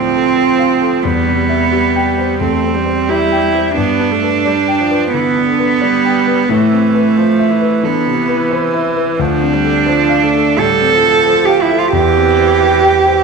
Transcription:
0.00 1.07 D2 soft
0.00 1.06 A2 soft
0.00 1.05 F3 medium
0.00 1.05 C4 medium
0.00 1.06 C4 soft
0.00 0.14 A4 soft
0.00 0.37 C5 soft
0.00 0.59 F5 soft
0.14 0.50 A4 soft
0.37 0.72 C5 soft
0.59 0.95 F5 soft
0.81 1.04 A4 soft
1.03 2.37 E2 soft
1.03 1.72 G3 medium
1.03 2.40 B3 medium
1.28 1.64 C3 soft
1.49 1.86 E5 soft
1.72 2.42 G3 medium
1.72 2.09 G4 soft
1.96 2.32 G5 soft
2.18 2.55 C5 soft
2.41 3.73 E2 soft
2.41 2.77 A3 medium
2.41 3.11 C4 medium
2.63 3.00 C4 soft
2.75 3.76 G3 medium
2.86 3.23 C5 soft
3.09 3.77 E4 medium
3.09 3.45 G4 soft
3.32 3.68 G5 soft
3.55 3.77 C5 soft
3.77 5.09 G2 medium
3.77 4.13 B3 medium
3.77 5.10 D4 medium
4.01 4.37 D4 soft
4.12 4.48 A3 medium
4.23 4.59 B4 soft
4.45 4.81 G3 soft
4.45 4.81 D5 soft
4.68 5.04 G5 soft
4.80 5.16 F3 medium
4.91 5.27 B4 soft
5.13 5.49 D3 soft
5.13 5.48 E3 medium
5.13 6.51 B3 medium
5.36 5.72 D4 soft
5.48 5.84 D3 soft
5.59 5.95 B4 soft
5.81 6.50 G3 medium
5.81 6.18 D5 soft
6.05 6.40 G5 soft
6.27 6.49 B4 soft
6.49 7.80 A2 medium
6.49 7.18 E3 medium
6.49 7.86 A3 medium
6.72 7.08 C4 soft
6.94 7.30 B4 medium
7.17 7.52 F3 medium
7.17 7.53 C5 soft
7.39 7.75 E5 soft
7.51 7.86 E3 medium
7.61 7.97 B4 medium
7.83 8.18 D3 medium
7.83 8.19 E3 soft
7.83 8.52 B3 medium
8.06 8.42 C3 soft
8.19 9.22 E3 medium
8.29 8.65 B4 medium
8.51 8.87 C5 medium
8.74 9.10 E5 soft
8.96 9.19 B4 soft
9.19 10.54 D2 medium
9.19 9.55 F3 medium
9.19 10.60 D4 medium
9.41 9.77 C4 soft
9.53 9.89 G3 medium
9.64 10.00 A4 medium
9.86 10.25 F3 medium
9.86 10.24 C5 medium
10.09 10.48 F5 medium
10.23 10.60 A3 medium
10.34 10.72 A4 soft
10.58 10.95 A2 soft
10.58 10.95 G3 medium
10.58 11.46 A4 medium
10.81 11.17 C4 soft
10.94 11.97 F3 medium
11.04 11.40 A4 soft
11.26 11.62 C5 medium
11.45 11.63 G4 medium
11.45 11.85 F5 soft
11.62 11.80 E4 medium
11.71 11.94 A4 soft
11.78 11.93 F4 medium
11.93 13.24 E2 medium
11.93 13.24 E3 medium
11.93 13.24 G4 medium
12.17 12.53 C4 soft
12.39 12.75 C5 soft
12.61 12.97 G4 soft
12.84 13.20 G5 soft
13.06 13.24 C5 soft

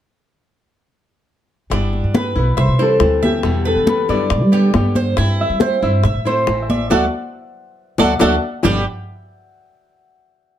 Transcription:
1.70 2.02 G1 medium
1.70 2.13 G3 medium
1.70 2.13 B3 medium
1.70 2.13 D4 medium
1.70 2.14 E4 medium
1.70 high bongo medium
1.70 high conga soft
1.93 high conga soft
2.04 2.34 G2 medium
2.14 2.35 G3 soft
2.14 2.36 B3 soft
2.14 2.34 E4 medium
2.14 2.56 B4 medium
2.14 2.38 B4 medium
2.14 high bongo medium
2.14 high conga loud
2.35 2.56 B1 medium
2.35 2.58 B3 medium
2.35 2.56 E4 medium
2.35 2.66 B4 medium
2.35 high conga soft
2.57 2.70 C2 loud
2.57 3.95 C5 medium
2.57 2.78 E5 medium
2.57 muted nylon-string guitar stroke medium
2.57 high bongo medium
2.57 high conga soft
2.68 2.99 C3 medium
2.79 2.99 E3 medium
2.79 3.00 G3 medium
2.79 3.00 C4 medium
2.79 3.00 E4 medium
2.79 3.67 A4 medium
2.79 3.21 C5 medium
2.79 high conga soft
3.00 3.42 D2 medium
3.00 3.43 E3 soft
3.00 3.43 G3 medium
3.00 3.44 C4 medium
3.00 3.44 E4 medium
3.00 high bongo medium
3.00 low bongo medium
3.00 high conga soft
3.23 5.60 G4 medium
3.23 3.64 E5 medium
3.23 high conga medium
3.43 3.75 E2 medium
3.43 3.86 B2 medium
3.43 3.86 D3 medium
3.43 3.87 G3 medium
3.43 3.87 B3 medium
3.43 3.87 E4 medium
3.43 high bongo medium
3.43 high conga soft
3.65 5.87 A4 medium
3.65 4.07 B4 medium
3.65 high conga soft
3.76 4.07 E3 medium
3.87 4.08 D3 soft
3.87 4.08 G3 soft
3.87 4.09 B3 soft
3.87 4.08 E4 medium
3.87 5.94 B4 medium
3.87 high bongo medium
3.87 high conga medium
4.08 4.30 F#2 medium
4.08 4.30 D3 medium
4.08 4.30 G3 medium
4.08 4.30 B3 medium
4.08 4.30 E4 medium
4.08 4.51 D5 medium
4.08 5.95 D5 medium
4.08 high bongo soft
4.30 4.42 G2 loud
4.30 muted nylon-string guitar stroke medium
4.30 high bongo medium
4.30 high conga soft
4.42 4.72 G3 medium
4.52 4.73 D3 medium
4.52 4.73 G3 medium
4.52 4.74 B3 medium
4.52 4.73 G4 medium
4.52 4.94 G4 medium
4.52 high bongo soft
4.52 high conga soft
4.74 5.15 G2 medium
4.74 5.16 D3 medium
4.74 5.17 G3 medium
4.74 5.17 B3 medium
4.74 5.17 G4 medium
4.74 high bongo medium
4.74 low bongo medium
4.74 high conga medium
4.95 5.17 C5 medium
4.95 high bongo soft
4.95 high conga medium
5.17 5.48 G2 medium
5.17 5.60 G3 medium
5.17 5.60 C4 medium
5.17 5.59 E4 medium
5.17 5.61 E4 medium
5.17 high bongo medium
5.17 high conga soft
5.40 5.83 E5 loud
5.40 high conga soft
5.50 5.81 G3 medium
5.60 5.82 G3 medium
5.60 5.82 C4 soft
5.60 5.81 E4 medium
5.60 6.03 C5 medium
5.60 high bongo medium
5.60 high conga loud
5.82 6.03 G2 loud
5.82 6.04 C4 medium
5.82 6.03 E4 medium
5.82 6.62 E5 medium
5.82 high conga soft
6.04 6.14 A2 medium
6.04 6.25 E5 medium
6.04 muted nylon-string guitar stroke medium
6.04 high bongo medium
6.04 high conga soft
6.15 6.46 A2 medium
6.25 6.47 A3 medium
6.25 6.47 C4 medium
6.25 6.46 E4 medium
6.25 6.68 C5 medium
6.25 8.25 C5 medium
6.25 high conga soft
6.47 6.88 A1 medium
6.47 6.89 E3 soft
6.47 6.89 A3 medium
6.47 6.90 C4 medium
6.47 6.90 E4 medium
6.47 high bongo medium
6.47 low bongo medium
6.47 high conga soft
6.62 6.91 E5 medium
6.70 6.89 D5 medium
6.70 6.90 E5 medium
6.70 high conga medium
6.90 7.07 D2 medium
6.90 7.04 F#3 medium
6.90 7.04 A3 medium
6.90 7.04 D4 medium
6.90 7.05 F#4 medium
6.90 7.05 A4 medium
6.90 7.05 D5 medium
6.90 7.05 E5 medium
6.90 7.05 F#5 medium
6.90 low bongo medium
6.90 high conga medium
7.98 8.15 D2 medium
7.98 8.13 F#3 medium
7.98 8.12 A3 medium
7.98 8.13 D4 medium
7.98 8.13 F#4 medium
7.98 8.13 A4 medium
7.98 8.14 D5 medium
7.98 8.13 D5 loud
7.98 8.14 E5 medium
7.98 low bongo loud
7.98 high conga medium
8.03 8.14 F#5 medium
8.19 8.37 D2 medium
8.19 8.34 F#3 loud
8.19 8.34 A3 medium
8.19 8.34 D4 loud
8.19 8.35 F#4 medium
8.19 8.34 A4 medium
8.19 8.35 D5 loud
8.19 8.34 D5 medium
8.19 8.35 E5 loud
8.19 low bongo loud
8.19 high conga loud
8.24 8.35 F#5 loud
8.63 8.84 G1 medium
8.63 8.80 G2 medium
8.63 8.81 B2 medium
8.63 8.81 D3 medium
8.63 8.84 G3 medium
8.63 8.81 G3 medium
8.63 8.82 B3 medium
8.63 8.84 D4 medium
8.63 8.85 G4 loud
8.63 8.82 G4 medium
8.63 8.85 G5 medium
8.63 low bongo medium
8.63 low conga medium

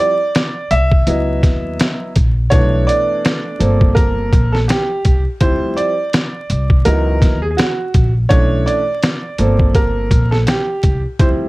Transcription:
0.00 0.12 F3 medium
0.00 0.12 G3 medium
0.00 0.13 C4 medium
0.00 0.13 E4 medium
0.00 0.73 D5 loud
0.35 snare loud
0.35 closed hi-hat medium
0.71 1.04 C2 medium
0.71 2.12 E5 loud
0.71 closed hi-hat medium
0.92 kick medium
1.07 1.40 C#2 loud
1.07 2.12 F#3 soft
1.07 2.12 B3 soft
1.07 2.12 E4 medium
1.07 2.12 D#5 medium
1.07 closed hi-hat medium
1.43 1.76 D#2 medium
1.43 kick medium
1.43 snare soft
1.43 closed hi-hat medium
1.80 snare loud
1.80 closed hi-hat medium
2.16 2.49 A#1 medium
2.16 kick medium
2.16 closed hi-hat medium
2.50 2.85 B1 loud
2.50 3.56 E3 medium
2.50 3.56 A3 soft
2.50 3.56 B3 medium
2.50 3.57 D4 medium
2.50 2.88 C#5 loud
2.50 kick loud
2.50 closed hi-hat medium
2.87 3.99 D5 loud
2.87 closed hi-hat medium
3.25 snare loud
3.25 closed hi-hat medium
3.59 4.29 G1 loud
3.59 4.64 F3 medium
3.59 4.65 A#3 soft
3.59 4.65 C4 medium
3.59 4.51 A4 soft
3.59 closed hi-hat medium
3.81 kick medium
3.95 4.54 A#4 loud
3.95 kick medium
3.95 closed hi-hat medium
4.32 4.65 A#1 medium
4.32 kick medium
4.32 closed hi-hat medium
4.52 4.57 A4 medium
4.52 snare soft
4.68 5.21 G4 medium
4.68 snare loud
4.68 closed hi-hat medium
5.05 5.24 C2 medium
5.05 kick medium
5.05 closed hi-hat medium
5.41 5.74 D2 loud
5.41 5.91 F3 medium
5.41 5.91 G3 medium
5.41 5.92 C4 medium
5.41 5.92 E4 medium
5.41 5.78 C5 loud
5.41 kick loud
5.41 closed hi-hat loud
5.76 6.81 D5 loud
5.76 closed hi-hat medium
6.13 snare loud
6.13 closed hi-hat medium
6.50 6.83 C2 medium
6.50 closed hi-hat medium
6.70 kick medium
6.85 7.19 C#2 loud
6.85 7.36 E3 medium
6.85 7.36 F#3 medium
6.85 7.36 B3 soft
6.85 7.36 D#4 medium
6.85 7.38 A#4 medium
6.85 closed hi-hat medium
7.22 7.55 D#2 medium
7.22 kick medium
7.22 snare soft
7.22 closed hi-hat medium
7.42 7.46 G#4 medium
7.51 7.57 G#4 medium
7.57 8.10 F#4 medium
7.57 snare loud
7.57 closed hi-hat loud
7.94 8.27 A#1 medium
7.94 kick medium
7.94 closed hi-hat medium
8.29 8.63 B1 loud
8.29 8.80 E3 medium
8.29 8.80 A3 medium
8.29 8.80 C#4 soft
8.29 8.80 D4 medium
8.29 8.67 C#5 loud
8.29 kick loud
8.29 closed hi-hat loud
8.66 9.78 D5 loud
8.66 closed hi-hat medium
9.03 snare loud
9.03 closed hi-hat medium
9.38 10.07 G1 medium
9.38 10.43 F3 medium
9.38 10.43 A#3 soft
9.38 10.44 C4 medium
9.38 10.30 A4 soft
9.38 closed hi-hat medium
9.59 kick medium
9.75 10.28 A#4 medium
9.75 kick medium
9.75 closed hi-hat medium
10.11 10.44 A#1 medium
10.11 kick medium
10.11 closed hi-hat medium
10.31 10.36 A4 medium
10.31 snare soft
10.47 11.00 G4 medium
10.47 snare loud
10.47 closed hi-hat loud
10.83 11.02 C2 medium
10.83 kick medium
10.83 closed hi-hat medium
11.19 11.49 D2 loud
11.19 11.49 F3 medium
11.19 11.49 G3 medium
11.19 11.49 C4 soft
11.19 11.49 E4 medium
11.19 11.27 C5 medium
11.19 kick loud
11.19 closed hi-hat loud

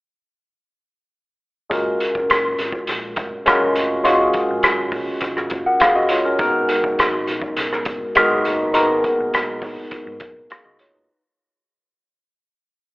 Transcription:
1.70 1.97 F#1 medium
1.70 2.47 G#3 medium
1.70 2.47 C#4 medium
1.70 2.47 F4 medium
1.70 2.48 F#4 medium
1.70 2.48 A#4 medium
1.70 kick loud
1.70 closed hi-hat medium
2.00 closed hi-hat medium
2.15 2.28 F1 medium
2.15 kick medium
2.30 2.56 F#1 medium
2.30 cross-stick medium
2.30 closed hi-hat medium
2.58 2.72 G#1 medium
2.58 closed hi-hat medium
2.72 kick medium
2.87 3.15 A#1 medium
2.87 cross-stick soft
2.87 closed hi-hat medium
3.16 3.30 F1 medium
3.16 kick medium
3.16 closed hi-hat medium
3.45 3.84 G#3 medium
3.45 3.85 C#4 medium
3.45 3.85 F4 medium
3.45 3.85 F#4 medium
3.45 3.85 A#4 medium
3.45 cross-stick loud
3.45 closed hi-hat medium
3.62 3.75 F1 medium
3.76 4.06 F1 medium
3.76 closed hi-hat medium
4.04 4.32 F#1 medium
4.04 4.81 G#3 medium
4.04 4.81 C#4 medium
4.04 4.82 F4 medium
4.04 4.82 F#4 medium
4.04 4.82 C#5 medium
4.04 closed hi-hat medium
4.33 kick medium
4.33 closed hi-hat medium
4.50 4.63 A#1 medium
4.63 4.90 G#1 medium
4.63 cross-stick medium
4.63 closed hi-hat medium
4.92 5.06 A#1 medium
4.92 kick medium
4.92 open hi-hat soft
5.21 5.48 G#1 medium
5.21 kick medium
5.21 cross-stick soft
5.21 closed hi-hat medium
5.37 cross-stick soft
5.50 5.65 F#1 medium
5.50 kick medium
5.50 closed hi-hat medium
5.66 5.80 A#4 soft
5.66 5.80 F#5 medium
5.80 5.95 G#4 medium
5.80 5.95 F5 medium
5.80 cross-stick medium
5.80 closed hi-hat medium
5.96 6.10 F#4 medium
5.96 6.10 D#5 medium
6.09 6.25 F4 medium
6.09 6.24 C#5 medium
6.09 closed hi-hat medium
6.25 6.53 C#4 soft
6.25 6.40 A#4 medium
6.39 6.66 G#1 medium
6.39 7.16 G#3 medium
6.39 7.16 B3 medium
6.39 7.17 D#4 medium
6.39 7.17 F#4 medium
6.39 7.17 A#4 medium
6.39 kick loud
6.39 closed hi-hat medium
6.69 closed hi-hat medium
6.84 6.97 F#1 medium
6.84 kick medium
6.98 7.24 G#1 medium
6.98 cross-stick medium
6.98 closed hi-hat medium
7.27 7.41 A#1 medium
7.27 closed hi-hat medium
7.42 kick medium
7.57 7.83 B1 medium
7.57 cross-stick soft
7.57 closed hi-hat medium
7.73 cross-stick soft
7.85 7.99 F#1 medium
7.85 kick medium
7.85 closed hi-hat medium
8.15 8.54 G#3 medium
8.15 8.54 B3 medium
8.15 8.54 D#4 medium
8.15 8.55 F#4 medium
8.15 8.55 A#4 medium
8.15 cross-stick loud
8.15 closed hi-hat medium
8.31 8.44 F#1 medium
8.45 8.72 F#1 medium
8.45 closed hi-hat medium
8.73 9.01 G#1 medium
8.73 9.50 G#3 medium
8.73 8.80 A#3 soft
8.73 9.51 D#4 medium
8.73 9.51 F#4 medium
8.73 9.51 A#4 medium
8.73 closed hi-hat medium
8.80 9.54 B3 medium
9.04 kick medium
9.04 closed hi-hat medium
9.20 9.32 B1 medium
9.34 9.62 A#1 medium
9.34 cross-stick medium
9.34 closed hi-hat medium
9.62 9.75 B1 medium
9.62 kick medium
9.62 open hi-hat soft
9.91 kick medium
9.91 closed hi-hat medium
10.07 10.19 G#2 medium
10.20 10.34 F#2 medium
10.20 kick medium
10.20 closed hi-hat medium
10.50 10.64 G#4 soft
10.50 10.64 F5 medium
10.50 cross-stick loud
10.50 closed hi-hat medium
10.65 10.78 C#2 medium
10.65 10.79 F#4 soft
10.65 10.78 D#5 medium
10.79 10.92 F1 medium
10.79 10.93 F4 medium
10.79 10.93 C#5 medium
10.79 closed hi-hat medium
10.94 11.07 F#1 medium
10.94 11.22 D#4 soft
10.94 11.22 B4 medium

